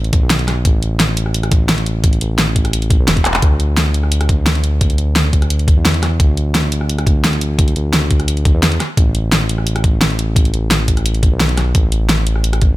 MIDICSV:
0, 0, Header, 1, 3, 480
1, 0, Start_track
1, 0, Tempo, 346821
1, 900, Time_signature, 4, 2, 24, 8
1, 17672, End_track
2, 0, Start_track
2, 0, Title_t, "Analog synth bass"
2, 0, Program_c, 0, 38
2, 0, Note_on_c, 0, 33, 82
2, 284, Note_off_c, 0, 33, 0
2, 304, Note_on_c, 0, 35, 91
2, 881, Note_off_c, 0, 35, 0
2, 899, Note_on_c, 0, 33, 96
2, 3041, Note_off_c, 0, 33, 0
2, 3057, Note_on_c, 0, 33, 83
2, 4122, Note_off_c, 0, 33, 0
2, 4143, Note_on_c, 0, 35, 89
2, 4250, Note_off_c, 0, 35, 0
2, 4258, Note_on_c, 0, 28, 97
2, 4475, Note_off_c, 0, 28, 0
2, 4498, Note_on_c, 0, 28, 93
2, 4715, Note_off_c, 0, 28, 0
2, 4739, Note_on_c, 0, 38, 102
2, 6881, Note_off_c, 0, 38, 0
2, 6897, Note_on_c, 0, 38, 82
2, 7962, Note_off_c, 0, 38, 0
2, 7983, Note_on_c, 0, 40, 90
2, 8561, Note_off_c, 0, 40, 0
2, 8577, Note_on_c, 0, 38, 98
2, 10720, Note_off_c, 0, 38, 0
2, 10740, Note_on_c, 0, 38, 84
2, 11803, Note_off_c, 0, 38, 0
2, 11823, Note_on_c, 0, 40, 89
2, 12161, Note_off_c, 0, 40, 0
2, 12421, Note_on_c, 0, 33, 101
2, 14561, Note_off_c, 0, 33, 0
2, 14580, Note_on_c, 0, 33, 78
2, 15644, Note_off_c, 0, 33, 0
2, 15666, Note_on_c, 0, 35, 96
2, 16242, Note_off_c, 0, 35, 0
2, 16261, Note_on_c, 0, 33, 93
2, 17672, Note_off_c, 0, 33, 0
2, 17672, End_track
3, 0, Start_track
3, 0, Title_t, "Drums"
3, 62, Note_on_c, 9, 42, 37
3, 178, Note_off_c, 9, 42, 0
3, 178, Note_on_c, 9, 42, 66
3, 181, Note_on_c, 9, 36, 101
3, 316, Note_off_c, 9, 42, 0
3, 319, Note_off_c, 9, 36, 0
3, 416, Note_on_c, 9, 38, 116
3, 416, Note_on_c, 9, 42, 96
3, 543, Note_off_c, 9, 42, 0
3, 543, Note_on_c, 9, 42, 36
3, 555, Note_off_c, 9, 38, 0
3, 662, Note_off_c, 9, 42, 0
3, 662, Note_on_c, 9, 37, 53
3, 662, Note_on_c, 9, 38, 36
3, 662, Note_on_c, 9, 42, 63
3, 800, Note_off_c, 9, 37, 0
3, 800, Note_off_c, 9, 38, 0
3, 800, Note_off_c, 9, 42, 0
3, 900, Note_on_c, 9, 36, 107
3, 900, Note_on_c, 9, 42, 96
3, 1038, Note_off_c, 9, 36, 0
3, 1039, Note_off_c, 9, 42, 0
3, 1142, Note_on_c, 9, 42, 66
3, 1280, Note_off_c, 9, 42, 0
3, 1379, Note_on_c, 9, 38, 112
3, 1379, Note_on_c, 9, 42, 94
3, 1518, Note_off_c, 9, 38, 0
3, 1518, Note_off_c, 9, 42, 0
3, 1620, Note_on_c, 9, 42, 69
3, 1744, Note_on_c, 9, 37, 36
3, 1758, Note_off_c, 9, 42, 0
3, 1861, Note_on_c, 9, 42, 99
3, 1883, Note_off_c, 9, 37, 0
3, 1985, Note_off_c, 9, 42, 0
3, 1985, Note_on_c, 9, 37, 55
3, 1985, Note_on_c, 9, 42, 39
3, 2097, Note_off_c, 9, 42, 0
3, 2097, Note_on_c, 9, 42, 66
3, 2099, Note_on_c, 9, 36, 103
3, 2123, Note_off_c, 9, 37, 0
3, 2236, Note_off_c, 9, 42, 0
3, 2237, Note_off_c, 9, 36, 0
3, 2337, Note_on_c, 9, 38, 120
3, 2337, Note_on_c, 9, 42, 99
3, 2462, Note_off_c, 9, 42, 0
3, 2462, Note_on_c, 9, 42, 37
3, 2475, Note_off_c, 9, 38, 0
3, 2580, Note_off_c, 9, 42, 0
3, 2580, Note_on_c, 9, 42, 71
3, 2718, Note_off_c, 9, 42, 0
3, 2819, Note_on_c, 9, 36, 108
3, 2819, Note_on_c, 9, 42, 94
3, 2946, Note_off_c, 9, 42, 0
3, 2946, Note_on_c, 9, 42, 37
3, 2957, Note_off_c, 9, 36, 0
3, 3062, Note_off_c, 9, 42, 0
3, 3062, Note_on_c, 9, 42, 69
3, 3200, Note_off_c, 9, 42, 0
3, 3300, Note_on_c, 9, 38, 113
3, 3300, Note_on_c, 9, 42, 96
3, 3438, Note_off_c, 9, 38, 0
3, 3438, Note_off_c, 9, 42, 0
3, 3539, Note_on_c, 9, 36, 60
3, 3541, Note_on_c, 9, 42, 69
3, 3665, Note_off_c, 9, 42, 0
3, 3665, Note_on_c, 9, 37, 36
3, 3665, Note_on_c, 9, 42, 40
3, 3678, Note_off_c, 9, 36, 0
3, 3783, Note_off_c, 9, 42, 0
3, 3783, Note_on_c, 9, 42, 101
3, 3804, Note_off_c, 9, 37, 0
3, 3904, Note_off_c, 9, 42, 0
3, 3904, Note_on_c, 9, 42, 40
3, 4019, Note_on_c, 9, 36, 102
3, 4021, Note_off_c, 9, 42, 0
3, 4021, Note_on_c, 9, 42, 70
3, 4158, Note_off_c, 9, 36, 0
3, 4159, Note_off_c, 9, 42, 0
3, 4258, Note_on_c, 9, 38, 112
3, 4258, Note_on_c, 9, 42, 100
3, 4383, Note_on_c, 9, 36, 61
3, 4384, Note_off_c, 9, 42, 0
3, 4384, Note_on_c, 9, 42, 39
3, 4397, Note_off_c, 9, 38, 0
3, 4500, Note_off_c, 9, 42, 0
3, 4500, Note_on_c, 9, 39, 90
3, 4500, Note_on_c, 9, 42, 68
3, 4521, Note_off_c, 9, 36, 0
3, 4620, Note_off_c, 9, 39, 0
3, 4620, Note_on_c, 9, 39, 101
3, 4639, Note_off_c, 9, 42, 0
3, 4739, Note_on_c, 9, 36, 119
3, 4739, Note_on_c, 9, 42, 95
3, 4759, Note_off_c, 9, 39, 0
3, 4877, Note_off_c, 9, 36, 0
3, 4877, Note_off_c, 9, 42, 0
3, 4979, Note_on_c, 9, 42, 63
3, 5117, Note_off_c, 9, 42, 0
3, 5220, Note_on_c, 9, 38, 117
3, 5220, Note_on_c, 9, 42, 97
3, 5358, Note_off_c, 9, 38, 0
3, 5358, Note_off_c, 9, 42, 0
3, 5458, Note_on_c, 9, 42, 66
3, 5584, Note_on_c, 9, 37, 36
3, 5597, Note_off_c, 9, 42, 0
3, 5698, Note_on_c, 9, 42, 102
3, 5722, Note_off_c, 9, 37, 0
3, 5822, Note_off_c, 9, 42, 0
3, 5822, Note_on_c, 9, 37, 61
3, 5822, Note_on_c, 9, 42, 42
3, 5938, Note_on_c, 9, 36, 103
3, 5940, Note_off_c, 9, 42, 0
3, 5940, Note_on_c, 9, 42, 71
3, 5961, Note_off_c, 9, 37, 0
3, 6077, Note_off_c, 9, 36, 0
3, 6078, Note_off_c, 9, 42, 0
3, 6178, Note_on_c, 9, 38, 123
3, 6178, Note_on_c, 9, 42, 101
3, 6302, Note_off_c, 9, 42, 0
3, 6302, Note_on_c, 9, 42, 38
3, 6316, Note_off_c, 9, 38, 0
3, 6417, Note_off_c, 9, 42, 0
3, 6417, Note_on_c, 9, 42, 70
3, 6555, Note_off_c, 9, 42, 0
3, 6658, Note_on_c, 9, 36, 120
3, 6658, Note_on_c, 9, 42, 92
3, 6780, Note_off_c, 9, 42, 0
3, 6780, Note_on_c, 9, 42, 39
3, 6796, Note_off_c, 9, 36, 0
3, 6895, Note_off_c, 9, 42, 0
3, 6895, Note_on_c, 9, 42, 66
3, 7034, Note_off_c, 9, 42, 0
3, 7138, Note_on_c, 9, 38, 118
3, 7138, Note_on_c, 9, 42, 91
3, 7276, Note_off_c, 9, 38, 0
3, 7276, Note_off_c, 9, 42, 0
3, 7378, Note_on_c, 9, 36, 68
3, 7378, Note_on_c, 9, 42, 69
3, 7503, Note_off_c, 9, 42, 0
3, 7503, Note_on_c, 9, 37, 38
3, 7503, Note_on_c, 9, 42, 38
3, 7516, Note_off_c, 9, 36, 0
3, 7617, Note_off_c, 9, 42, 0
3, 7617, Note_on_c, 9, 42, 99
3, 7641, Note_off_c, 9, 37, 0
3, 7742, Note_off_c, 9, 42, 0
3, 7742, Note_on_c, 9, 42, 37
3, 7858, Note_on_c, 9, 36, 113
3, 7860, Note_off_c, 9, 42, 0
3, 7860, Note_on_c, 9, 42, 67
3, 7996, Note_off_c, 9, 36, 0
3, 7999, Note_off_c, 9, 42, 0
3, 8101, Note_on_c, 9, 38, 127
3, 8101, Note_on_c, 9, 42, 94
3, 8226, Note_off_c, 9, 42, 0
3, 8226, Note_on_c, 9, 42, 36
3, 8240, Note_off_c, 9, 38, 0
3, 8341, Note_off_c, 9, 42, 0
3, 8341, Note_on_c, 9, 37, 59
3, 8341, Note_on_c, 9, 38, 37
3, 8341, Note_on_c, 9, 42, 66
3, 8480, Note_off_c, 9, 37, 0
3, 8480, Note_off_c, 9, 38, 0
3, 8480, Note_off_c, 9, 42, 0
3, 8578, Note_on_c, 9, 36, 118
3, 8579, Note_on_c, 9, 42, 87
3, 8716, Note_off_c, 9, 36, 0
3, 8718, Note_off_c, 9, 42, 0
3, 8821, Note_on_c, 9, 42, 63
3, 8960, Note_off_c, 9, 42, 0
3, 9061, Note_on_c, 9, 38, 123
3, 9061, Note_on_c, 9, 42, 85
3, 9200, Note_off_c, 9, 38, 0
3, 9200, Note_off_c, 9, 42, 0
3, 9301, Note_on_c, 9, 42, 64
3, 9426, Note_on_c, 9, 37, 37
3, 9439, Note_off_c, 9, 42, 0
3, 9542, Note_on_c, 9, 42, 93
3, 9564, Note_off_c, 9, 37, 0
3, 9668, Note_off_c, 9, 42, 0
3, 9668, Note_on_c, 9, 37, 59
3, 9668, Note_on_c, 9, 42, 38
3, 9779, Note_on_c, 9, 36, 112
3, 9783, Note_off_c, 9, 42, 0
3, 9783, Note_on_c, 9, 42, 63
3, 9806, Note_off_c, 9, 37, 0
3, 9917, Note_off_c, 9, 36, 0
3, 9921, Note_off_c, 9, 42, 0
3, 10025, Note_on_c, 9, 38, 127
3, 10025, Note_on_c, 9, 42, 95
3, 10147, Note_off_c, 9, 42, 0
3, 10147, Note_on_c, 9, 42, 35
3, 10163, Note_off_c, 9, 38, 0
3, 10261, Note_off_c, 9, 42, 0
3, 10261, Note_on_c, 9, 42, 66
3, 10400, Note_off_c, 9, 42, 0
3, 10500, Note_on_c, 9, 36, 120
3, 10501, Note_on_c, 9, 42, 87
3, 10626, Note_off_c, 9, 42, 0
3, 10626, Note_on_c, 9, 42, 37
3, 10638, Note_off_c, 9, 36, 0
3, 10740, Note_off_c, 9, 42, 0
3, 10740, Note_on_c, 9, 42, 60
3, 10879, Note_off_c, 9, 42, 0
3, 10979, Note_on_c, 9, 38, 122
3, 10979, Note_on_c, 9, 42, 89
3, 11117, Note_off_c, 9, 38, 0
3, 11117, Note_off_c, 9, 42, 0
3, 11218, Note_on_c, 9, 42, 63
3, 11220, Note_on_c, 9, 36, 67
3, 11344, Note_off_c, 9, 42, 0
3, 11344, Note_on_c, 9, 37, 34
3, 11344, Note_on_c, 9, 42, 35
3, 11358, Note_off_c, 9, 36, 0
3, 11460, Note_off_c, 9, 42, 0
3, 11460, Note_on_c, 9, 42, 89
3, 11482, Note_off_c, 9, 37, 0
3, 11585, Note_off_c, 9, 42, 0
3, 11585, Note_on_c, 9, 42, 37
3, 11699, Note_on_c, 9, 36, 112
3, 11700, Note_off_c, 9, 42, 0
3, 11700, Note_on_c, 9, 42, 63
3, 11838, Note_off_c, 9, 36, 0
3, 11838, Note_off_c, 9, 42, 0
3, 11941, Note_on_c, 9, 38, 125
3, 11941, Note_on_c, 9, 42, 88
3, 12065, Note_off_c, 9, 42, 0
3, 12065, Note_on_c, 9, 42, 36
3, 12080, Note_off_c, 9, 38, 0
3, 12182, Note_off_c, 9, 42, 0
3, 12182, Note_on_c, 9, 37, 55
3, 12182, Note_on_c, 9, 38, 38
3, 12182, Note_on_c, 9, 42, 64
3, 12321, Note_off_c, 9, 37, 0
3, 12321, Note_off_c, 9, 38, 0
3, 12321, Note_off_c, 9, 42, 0
3, 12419, Note_on_c, 9, 36, 116
3, 12421, Note_on_c, 9, 42, 86
3, 12557, Note_off_c, 9, 36, 0
3, 12560, Note_off_c, 9, 42, 0
3, 12660, Note_on_c, 9, 42, 61
3, 12798, Note_off_c, 9, 42, 0
3, 12901, Note_on_c, 9, 38, 119
3, 12901, Note_on_c, 9, 42, 87
3, 13039, Note_off_c, 9, 38, 0
3, 13039, Note_off_c, 9, 42, 0
3, 13140, Note_on_c, 9, 42, 66
3, 13262, Note_on_c, 9, 37, 36
3, 13278, Note_off_c, 9, 42, 0
3, 13378, Note_on_c, 9, 42, 92
3, 13401, Note_off_c, 9, 37, 0
3, 13504, Note_off_c, 9, 42, 0
3, 13504, Note_on_c, 9, 37, 56
3, 13504, Note_on_c, 9, 42, 35
3, 13618, Note_on_c, 9, 36, 103
3, 13620, Note_off_c, 9, 42, 0
3, 13620, Note_on_c, 9, 42, 63
3, 13642, Note_off_c, 9, 37, 0
3, 13757, Note_off_c, 9, 36, 0
3, 13758, Note_off_c, 9, 42, 0
3, 13859, Note_on_c, 9, 38, 124
3, 13859, Note_on_c, 9, 42, 91
3, 13985, Note_off_c, 9, 42, 0
3, 13985, Note_on_c, 9, 42, 34
3, 13997, Note_off_c, 9, 38, 0
3, 14102, Note_off_c, 9, 42, 0
3, 14102, Note_on_c, 9, 42, 64
3, 14240, Note_off_c, 9, 42, 0
3, 14338, Note_on_c, 9, 36, 110
3, 14343, Note_on_c, 9, 42, 96
3, 14467, Note_off_c, 9, 42, 0
3, 14467, Note_on_c, 9, 42, 38
3, 14476, Note_off_c, 9, 36, 0
3, 14583, Note_off_c, 9, 42, 0
3, 14583, Note_on_c, 9, 42, 66
3, 14721, Note_off_c, 9, 42, 0
3, 14819, Note_on_c, 9, 38, 115
3, 14819, Note_on_c, 9, 42, 91
3, 14958, Note_off_c, 9, 38, 0
3, 14958, Note_off_c, 9, 42, 0
3, 15058, Note_on_c, 9, 36, 64
3, 15058, Note_on_c, 9, 42, 63
3, 15184, Note_off_c, 9, 42, 0
3, 15184, Note_on_c, 9, 37, 35
3, 15184, Note_on_c, 9, 42, 37
3, 15197, Note_off_c, 9, 36, 0
3, 15302, Note_off_c, 9, 42, 0
3, 15302, Note_on_c, 9, 42, 92
3, 15322, Note_off_c, 9, 37, 0
3, 15425, Note_off_c, 9, 42, 0
3, 15425, Note_on_c, 9, 42, 38
3, 15539, Note_on_c, 9, 36, 100
3, 15541, Note_off_c, 9, 42, 0
3, 15541, Note_on_c, 9, 42, 65
3, 15678, Note_off_c, 9, 36, 0
3, 15679, Note_off_c, 9, 42, 0
3, 15780, Note_on_c, 9, 38, 123
3, 15780, Note_on_c, 9, 42, 93
3, 15903, Note_off_c, 9, 42, 0
3, 15903, Note_on_c, 9, 42, 37
3, 15918, Note_off_c, 9, 38, 0
3, 16020, Note_off_c, 9, 42, 0
3, 16020, Note_on_c, 9, 37, 54
3, 16020, Note_on_c, 9, 38, 36
3, 16020, Note_on_c, 9, 42, 65
3, 16158, Note_off_c, 9, 37, 0
3, 16158, Note_off_c, 9, 38, 0
3, 16158, Note_off_c, 9, 42, 0
3, 16259, Note_on_c, 9, 42, 95
3, 16260, Note_on_c, 9, 36, 110
3, 16397, Note_off_c, 9, 42, 0
3, 16399, Note_off_c, 9, 36, 0
3, 16497, Note_on_c, 9, 42, 65
3, 16636, Note_off_c, 9, 42, 0
3, 16736, Note_on_c, 9, 38, 112
3, 16736, Note_on_c, 9, 42, 95
3, 16875, Note_off_c, 9, 38, 0
3, 16875, Note_off_c, 9, 42, 0
3, 16977, Note_on_c, 9, 42, 68
3, 17101, Note_on_c, 9, 37, 36
3, 17115, Note_off_c, 9, 42, 0
3, 17217, Note_on_c, 9, 42, 97
3, 17239, Note_off_c, 9, 37, 0
3, 17343, Note_off_c, 9, 42, 0
3, 17343, Note_on_c, 9, 37, 58
3, 17343, Note_on_c, 9, 42, 41
3, 17459, Note_off_c, 9, 42, 0
3, 17459, Note_on_c, 9, 42, 66
3, 17462, Note_on_c, 9, 36, 97
3, 17481, Note_off_c, 9, 37, 0
3, 17598, Note_off_c, 9, 42, 0
3, 17600, Note_off_c, 9, 36, 0
3, 17672, End_track
0, 0, End_of_file